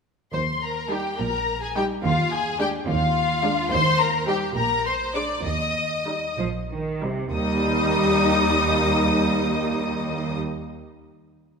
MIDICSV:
0, 0, Header, 1, 6, 480
1, 0, Start_track
1, 0, Key_signature, -3, "major"
1, 0, Tempo, 564972
1, 287, Time_signature, 6, 3, 24, 8
1, 4123, Tempo, 619195
1, 6043, Tempo, 603015
1, 9442, End_track
2, 0, Start_track
2, 0, Title_t, "Violin section"
2, 0, Program_c, 0, 48
2, 286, Note_on_c, 0, 84, 58
2, 513, Note_off_c, 0, 84, 0
2, 542, Note_on_c, 0, 82, 49
2, 776, Note_on_c, 0, 79, 52
2, 781, Note_off_c, 0, 82, 0
2, 1007, Note_on_c, 0, 82, 61
2, 1018, Note_off_c, 0, 79, 0
2, 1371, Note_off_c, 0, 82, 0
2, 1381, Note_on_c, 0, 80, 59
2, 1493, Note_on_c, 0, 79, 65
2, 1496, Note_off_c, 0, 80, 0
2, 1561, Note_off_c, 0, 79, 0
2, 1731, Note_on_c, 0, 77, 68
2, 1963, Note_off_c, 0, 77, 0
2, 1974, Note_on_c, 0, 80, 71
2, 2208, Note_on_c, 0, 79, 70
2, 2209, Note_off_c, 0, 80, 0
2, 2276, Note_off_c, 0, 79, 0
2, 2455, Note_on_c, 0, 77, 81
2, 3147, Note_off_c, 0, 77, 0
2, 3157, Note_on_c, 0, 84, 93
2, 3389, Note_off_c, 0, 84, 0
2, 3398, Note_on_c, 0, 82, 72
2, 3634, Note_off_c, 0, 82, 0
2, 3634, Note_on_c, 0, 79, 65
2, 3702, Note_off_c, 0, 79, 0
2, 3878, Note_on_c, 0, 82, 73
2, 4120, Note_off_c, 0, 82, 0
2, 4126, Note_on_c, 0, 84, 69
2, 4188, Note_off_c, 0, 84, 0
2, 4354, Note_on_c, 0, 86, 61
2, 4416, Note_off_c, 0, 86, 0
2, 4592, Note_on_c, 0, 87, 62
2, 5298, Note_off_c, 0, 87, 0
2, 6047, Note_on_c, 0, 87, 80
2, 8447, Note_off_c, 0, 87, 0
2, 9442, End_track
3, 0, Start_track
3, 0, Title_t, "Violin section"
3, 0, Program_c, 1, 48
3, 283, Note_on_c, 1, 72, 47
3, 351, Note_off_c, 1, 72, 0
3, 530, Note_on_c, 1, 70, 42
3, 770, Note_off_c, 1, 70, 0
3, 777, Note_on_c, 1, 67, 47
3, 1011, Note_on_c, 1, 70, 48
3, 1018, Note_off_c, 1, 67, 0
3, 1366, Note_off_c, 1, 70, 0
3, 1373, Note_on_c, 1, 68, 47
3, 1421, Note_off_c, 1, 68, 0
3, 1498, Note_on_c, 1, 67, 57
3, 1566, Note_off_c, 1, 67, 0
3, 1738, Note_on_c, 1, 65, 58
3, 1963, Note_on_c, 1, 68, 64
3, 1967, Note_off_c, 1, 65, 0
3, 2200, Note_on_c, 1, 67, 59
3, 2203, Note_off_c, 1, 68, 0
3, 2268, Note_off_c, 1, 67, 0
3, 2444, Note_on_c, 1, 65, 65
3, 3141, Note_off_c, 1, 65, 0
3, 3152, Note_on_c, 1, 72, 74
3, 3387, Note_on_c, 1, 70, 63
3, 3391, Note_off_c, 1, 72, 0
3, 3629, Note_off_c, 1, 70, 0
3, 3630, Note_on_c, 1, 67, 61
3, 3869, Note_off_c, 1, 67, 0
3, 3872, Note_on_c, 1, 70, 55
3, 4117, Note_off_c, 1, 70, 0
3, 4120, Note_on_c, 1, 72, 62
3, 4354, Note_off_c, 1, 72, 0
3, 4354, Note_on_c, 1, 74, 57
3, 4588, Note_on_c, 1, 75, 55
3, 4591, Note_off_c, 1, 74, 0
3, 5296, Note_off_c, 1, 75, 0
3, 6042, Note_on_c, 1, 75, 67
3, 8442, Note_off_c, 1, 75, 0
3, 9442, End_track
4, 0, Start_track
4, 0, Title_t, "Viola section"
4, 0, Program_c, 2, 48
4, 777, Note_on_c, 2, 55, 41
4, 779, Note_on_c, 2, 63, 43
4, 957, Note_off_c, 2, 55, 0
4, 958, Note_off_c, 2, 63, 0
4, 1498, Note_on_c, 2, 55, 51
4, 1498, Note_on_c, 2, 63, 52
4, 1673, Note_off_c, 2, 55, 0
4, 1673, Note_off_c, 2, 63, 0
4, 2207, Note_on_c, 2, 56, 57
4, 2212, Note_on_c, 2, 62, 60
4, 2384, Note_off_c, 2, 56, 0
4, 2386, Note_off_c, 2, 62, 0
4, 2923, Note_on_c, 2, 62, 59
4, 2924, Note_on_c, 2, 56, 59
4, 3097, Note_off_c, 2, 62, 0
4, 3098, Note_off_c, 2, 56, 0
4, 3636, Note_on_c, 2, 63, 56
4, 3637, Note_on_c, 2, 55, 56
4, 3814, Note_off_c, 2, 63, 0
4, 3815, Note_off_c, 2, 55, 0
4, 4359, Note_on_c, 2, 56, 47
4, 4359, Note_on_c, 2, 62, 46
4, 4533, Note_off_c, 2, 56, 0
4, 4533, Note_off_c, 2, 62, 0
4, 5074, Note_on_c, 2, 63, 41
4, 5075, Note_on_c, 2, 55, 44
4, 5252, Note_off_c, 2, 55, 0
4, 5252, Note_off_c, 2, 63, 0
4, 5807, Note_on_c, 2, 55, 45
4, 5810, Note_on_c, 2, 63, 43
4, 5984, Note_off_c, 2, 55, 0
4, 5986, Note_off_c, 2, 63, 0
4, 6050, Note_on_c, 2, 63, 63
4, 6052, Note_on_c, 2, 55, 65
4, 8450, Note_off_c, 2, 63, 0
4, 8451, Note_off_c, 2, 55, 0
4, 9442, End_track
5, 0, Start_track
5, 0, Title_t, "Cello section"
5, 0, Program_c, 3, 48
5, 285, Note_on_c, 3, 39, 47
5, 874, Note_off_c, 3, 39, 0
5, 1018, Note_on_c, 3, 46, 51
5, 1592, Note_off_c, 3, 46, 0
5, 1729, Note_on_c, 3, 39, 62
5, 2301, Note_off_c, 3, 39, 0
5, 2448, Note_on_c, 3, 39, 69
5, 3017, Note_off_c, 3, 39, 0
5, 3160, Note_on_c, 3, 39, 72
5, 3733, Note_off_c, 3, 39, 0
5, 3880, Note_on_c, 3, 46, 61
5, 4456, Note_off_c, 3, 46, 0
5, 4589, Note_on_c, 3, 39, 52
5, 5171, Note_off_c, 3, 39, 0
5, 5313, Note_on_c, 3, 53, 56
5, 5375, Note_off_c, 3, 53, 0
5, 5561, Note_on_c, 3, 51, 40
5, 5800, Note_off_c, 3, 51, 0
5, 5809, Note_on_c, 3, 48, 48
5, 6044, Note_on_c, 3, 39, 70
5, 6046, Note_off_c, 3, 48, 0
5, 8444, Note_off_c, 3, 39, 0
5, 9442, End_track
6, 0, Start_track
6, 0, Title_t, "Double bass section"
6, 0, Program_c, 4, 48
6, 288, Note_on_c, 4, 39, 43
6, 876, Note_off_c, 4, 39, 0
6, 1024, Note_on_c, 4, 34, 53
6, 1595, Note_off_c, 4, 34, 0
6, 1738, Note_on_c, 4, 39, 63
6, 2306, Note_off_c, 4, 39, 0
6, 2453, Note_on_c, 4, 39, 72
6, 3019, Note_off_c, 4, 39, 0
6, 3156, Note_on_c, 4, 39, 69
6, 3731, Note_off_c, 4, 39, 0
6, 3875, Note_on_c, 4, 34, 61
6, 4454, Note_off_c, 4, 34, 0
6, 4590, Note_on_c, 4, 39, 48
6, 5172, Note_off_c, 4, 39, 0
6, 5314, Note_on_c, 4, 34, 51
6, 5906, Note_off_c, 4, 34, 0
6, 6046, Note_on_c, 4, 39, 66
6, 8446, Note_off_c, 4, 39, 0
6, 9442, End_track
0, 0, End_of_file